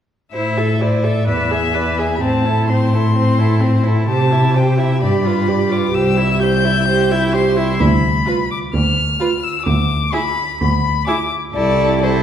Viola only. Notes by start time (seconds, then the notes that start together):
0.34 E4
0.58 A4
0.81 E4
1.04 A4
1.27 B4
1.51 G#4
1.74 B4
1.99 G#4
2.21 C4
2.45 E4
2.69 C4
2.93 E4
3.15 C4
3.39 E4
3.60 C4
3.84 E4
4.09 G4
4.31 E4
4.54 G4
4.78 E4
5.01 G4
5.25 F4
5.48 G4
5.70 F4
5.92 G4
6.17 E4
6.40 G4
6.64 E4
6.88 G4
7.11 E4
7.33 G4
7.56 E4
8.26 F4
9.20 F4
10.13 E4
11.07 E4
11.53 E4
12.01 E4